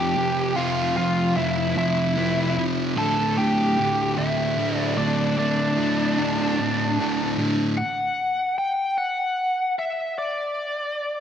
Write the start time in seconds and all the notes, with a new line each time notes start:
Already playing: F2 C3 F3 G4 G5
0.16 F2 C3 F3
0.55 F2 C3 F3 F4 F5
0.96 F2 C3 F3 F4 F5
1.36 F2 C3 F3 E4 E5
1.77 F2 C3 F3 E4 E5
2.17 F2 C3 F3
2.57 F2 C3 F3
2.96 D2 A2 D3 A4 A5
3.37 D2 A2 D3 G4 G5
3.77 D2 A2 D3
4.17 D2 A2 D3 E4 E5
4.57 D2 A2 D3
4.78 D5
4.98 D2 A2 D3 D4 D5
5.37 D2 A2 D3 D4 D5
5.77 D2 A2 D3
6.18 D2 A2 D3
6.59 D2 A2 D3
6.99 D2 A2 D3
7.38 D2 A2 D3
7.77 F#5
8.58 G5
8.98 F#5
9.79 E5
10.18 D5